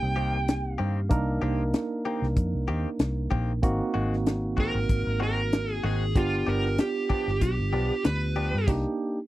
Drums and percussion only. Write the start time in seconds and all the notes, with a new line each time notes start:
0.48 snare, closed hi-hat
1.11 kick, closed hi-hat
1.73 snare, closed hi-hat
2.23 snare
2.37 kick, closed hi-hat
2.99 snare, closed hi-hat
3.32 kick
3.63 kick, closed hi-hat
4.13 snare
4.26 snare, closed hi-hat
4.58 kick
4.89 kick, closed hi-hat
5.53 snare, closed hi-hat
6.16 kick, closed hi-hat
6.66 snare
6.78 snare, closed hi-hat
7.10 kick
7.28 snare
7.41 kick, closed hi-hat
8.04 snare, closed hi-hat
8.68 kick, closed hi-hat, crash